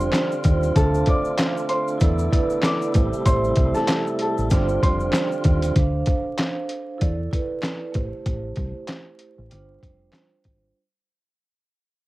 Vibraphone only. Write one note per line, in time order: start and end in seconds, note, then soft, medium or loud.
0.00 0.78 G3 medium
0.00 0.75 D4 medium
0.00 0.78 F4 medium
0.00 0.76 C5 medium
0.75 1.67 D4 medium
0.75 1.68 A4 medium
0.75 1.68 C5 medium
0.75 1.68 F5 medium
1.98 2.25 E4 loud
1.98 2.26 A4 medium
1.98 2.27 D5 loud
2.31 2.91 E4 medium
2.31 2.95 A4 medium
2.31 2.95 B4 medium
2.92 3.94 A3 medium
2.92 3.95 E4 medium
2.92 3.95 G4 medium
2.92 3.95 C5 medium
4.50 4.76 G3 medium
4.50 4.77 D4 medium
4.50 4.77 F4 medium
4.50 4.77 C5 medium
4.81 5.51 G3 medium
4.81 5.51 D4 medium
4.81 5.52 F4 medium
4.81 5.52 C5 medium
5.75 6.67 D4 medium
5.75 6.68 A4 medium
5.75 6.68 C5 medium
5.75 6.69 F5 medium
6.98 7.25 E4 loud
6.98 7.26 A4 medium
6.98 7.27 D5 loud
7.31 7.91 E4 medium
7.31 7.95 A4 medium
7.31 7.95 B4 medium
7.92 8.94 A3 medium
7.92 8.95 E4 medium
7.92 8.95 G4 medium
7.92 8.95 C5 medium
9.50 9.76 G3 medium
9.50 9.77 D4 medium
9.50 9.77 F4 medium
9.50 9.77 C5 medium
9.81 10.51 G3 medium
9.81 10.51 D4 medium
9.81 10.52 F4 medium
9.81 10.52 C5 medium